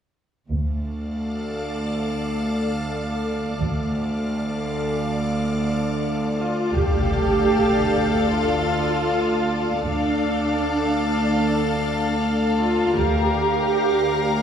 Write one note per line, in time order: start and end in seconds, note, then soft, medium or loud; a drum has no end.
0.49 3.57 D2 soft
0.49 1.24 D2 soft
0.49 3.58 A4 soft
0.49 3.59 D5 soft
0.49 3.58 F5 soft
3.61 4.35 D2 soft
3.61 6.49 D2 soft
3.61 6.69 A4 soft
3.61 6.69 D5 soft
3.61 6.69 F5 soft
6.35 6.71 F4 soft
6.73 7.47 D2 soft
6.73 9.81 D2 soft
6.73 8.29 G4 soft
6.73 9.81 A4 soft
6.73 9.81 D5 soft
6.73 9.81 F5 soft
6.73 impact soft
8.29 9.85 F4 soft
9.85 10.59 D2 soft
9.85 12.93 D2 soft
9.85 12.15 D4 soft
9.85 12.93 A4 soft
9.85 12.93 D5 soft
9.85 12.93 F5 soft
12.56 12.93 F4 soft
12.95 14.42 D2 soft
12.95 13.71 D2 soft
12.95 14.42 G4 soft
12.95 14.42 A#4 soft
12.95 14.42 D5 soft
12.95 14.42 F5 soft